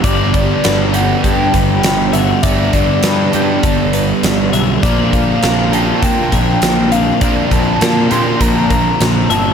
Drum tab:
HH |xxxxxxxx|xxxxxxxx|xxxxxxxx|xxxxxxxx|
SD |--o--oo-|--o---o-|--o---o-|--o---o-|
BD |oo--oo--|oo--o---|oo--oo--|oo--oo--|